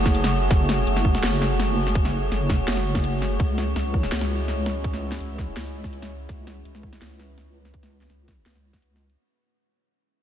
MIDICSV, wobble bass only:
0, 0, Header, 1, 2, 480
1, 0, Start_track
1, 0, Tempo, 361446
1, 672, Time_signature, 4, 2, 24, 8
1, 13584, End_track
2, 0, Start_track
2, 0, Title_t, "Wobble bass"
2, 0, Program_c, 0, 39
2, 0, Note_on_c, 0, 30, 95
2, 655, Note_off_c, 0, 30, 0
2, 674, Note_on_c, 0, 30, 91
2, 1134, Note_off_c, 0, 30, 0
2, 1152, Note_on_c, 0, 30, 92
2, 1613, Note_off_c, 0, 30, 0
2, 1633, Note_on_c, 0, 30, 94
2, 3054, Note_off_c, 0, 30, 0
2, 3077, Note_on_c, 0, 30, 95
2, 3536, Note_off_c, 0, 30, 0
2, 3555, Note_on_c, 0, 30, 95
2, 4495, Note_off_c, 0, 30, 0
2, 4515, Note_on_c, 0, 37, 92
2, 4975, Note_off_c, 0, 37, 0
2, 4997, Note_on_c, 0, 37, 93
2, 5456, Note_off_c, 0, 37, 0
2, 5480, Note_on_c, 0, 37, 93
2, 6897, Note_off_c, 0, 37, 0
2, 6915, Note_on_c, 0, 37, 91
2, 7375, Note_off_c, 0, 37, 0
2, 7393, Note_on_c, 0, 37, 97
2, 8334, Note_off_c, 0, 37, 0
2, 8354, Note_on_c, 0, 37, 90
2, 8814, Note_off_c, 0, 37, 0
2, 8833, Note_on_c, 0, 37, 93
2, 9294, Note_off_c, 0, 37, 0
2, 9316, Note_on_c, 0, 37, 93
2, 10735, Note_off_c, 0, 37, 0
2, 10757, Note_on_c, 0, 37, 90
2, 11216, Note_off_c, 0, 37, 0
2, 11237, Note_on_c, 0, 37, 92
2, 12176, Note_off_c, 0, 37, 0
2, 13584, End_track
0, 0, End_of_file